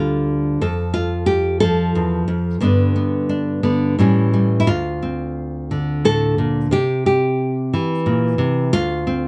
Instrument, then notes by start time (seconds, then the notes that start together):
nylon-string guitar
Already playing: D2 D3 G3 F4 A4
0.61 F2 A4
0.94 F4
1.26 G4
1.60 F3 A4
1.95 E2
2.28 F2
2.60 G2 D3 B3 D4
2.96 B3
3.29 D4
3.63 D3 B3
3.99 A2 E3 G3 C#4
4.33 G3
4.60 E4
4.67 D2 F4
5.02 C4
5.71 D3
6.05 A2 A4
6.38 A#2
6.71 C3 G4
7.06 G4
7.73 E3
8.06 A#2
8.38 C3
8.73 D2 F4
9.07 C4